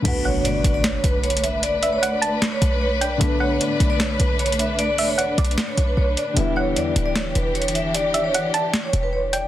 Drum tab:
CC |x-----------------------|------------------------|------------------------|------------------------|
HH |x-----x--x--x--x--xxxx--|x--x--x--x--x--x-----x--|x-----x--x--x--x--xxxx--|x--o--x--xxxx--x-----x--|
CP |------------x-----------|------------x-----------|------------x-----------|------------x-----------|
SD |------------o-----------|------------o-----------|------------o-----------|------------o-----------|

CC |------------------------|------------------------|
HH |x-----x--x--x--x--xxxx--|x--x--x--x--x--x-----x--|
CP |------------x-----------|------------x-----------|
SD |------------o-----------|------------o-----------|